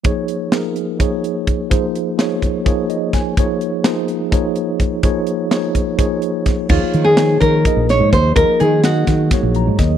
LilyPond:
<<
  \new Staff \with { instrumentName = "Nylon-string guitar" } { \time 7/8 \key des \major \tempo 4 = 126 r2. r8 | r2. r8 | r2. r8 | r2. r8 |
f'8. aes'8. bes'4 des''8 c''8 | bes'8 aes'8 ges'2 r8 | }
  \new Staff \with { instrumentName = "Tine electric piano" } { \time 7/8 \key des \major << { r2. r8 | r2 r8 ees''8 aes''8 | r2. r8 | r2. r8 |
r2. r8 | r2 r8 bes''8 ees''8 | } \\ { <f bes ees' aes' des''>4 <f bes ees' aes' bes'>4 <f bes ees' aes' des''>4. | <f bes ees' aes' c''>4 <f bes ees' aes' des''>4 <f bes ees' aes' des''>4. | <f bes ees' aes' des''>4 <f bes ees' aes' c''>4 <f bes ees' aes' des''>4. | <f bes ees' aes' des''>4 <f bes ees' aes' des''>4 <f bes ees' aes' des''>4. |
<f bes ees' aes' des''>4 <f bes ees' aes' des''>4 <f bes ees' aes' ees''>4. | <f bes ees' aes' ees''>4 <ges bes ees' aes' ees''>4 <ges bes ees' aes' des''>4. | } >> }
  \new Staff \with { instrumentName = "Fretless electric bass" } { \clef bass \time 7/8 \key des \major r2. r8 | r2. r8 | r2. r8 | r2. r8 |
ees,16 r16 ees4 ees8 r16 bes,,8 aes,16 ees,8 | ees,16 r16 ees4 ees8 r16 bes,,8 aes,16 ees,8 | }
  \new DrumStaff \with { instrumentName = "Drums" } \drummode { \time 7/8 <hh bd>8 hh8 <hh sn>8 hh8 <hh bd>8 hh8 <hh bd>8 | <hh bd>8 hh8 <hh sn>8 <hh bd>8 <hh bd>8 hh8 <hh bd sn>8 | <hh bd>8 hh8 <hh sn>8 hh8 <hh bd>8 hh8 <hh bd>8 | <hh bd>8 hh8 <hh sn>8 <hh bd>8 <hh bd>8 hh8 <hh bd sn>8 |
<cymc bd>8 hh8 <hh sn>8 <hh bd>8 <hh bd>8 <hh sn>8 <hh bd>8 | <hh bd>8 hh8 <hh sn>8 <hh bd sn>8 <hh bd sn>8 hh8 <hh bd sn>8 | }
>>